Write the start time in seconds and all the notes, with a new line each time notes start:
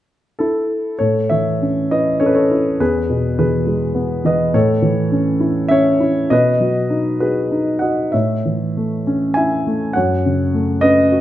0.39 E4 A4
0.99 A2 A4 C#5
1.30 E3 C#5 E5
1.62 C#4
1.91 E4 B4 D#5
2.20 C#4 A4 C#5
2.26 B4
2.35 A4 C#5
2.51 E4
2.80 E2 G#4 B4
3.10 B2
3.39 E3 G#4 B4
3.67 G#3
3.95 B3
4.25 E3 B4 D#5
4.54 A2 A4 C#5
4.82 E3
5.12 C#4
5.40 E4
5.69 C#4 C#5 E5
6.00 E4
6.30 B2 B4 D#5
6.60 F#3
6.90 D#4
7.20 F#4 G#4 B4
7.52 D#4
7.79 F#4 D#5 F#5
8.12 A2 C#5 E5
8.45 E3
8.77 A3
9.07 C#4
9.34 E4 E5 G#5
9.67 A3
9.93 F#2 C#5 F#5
10.26 C#3
10.54 A3
10.81 C#4 B4 D#5
11.12 F#4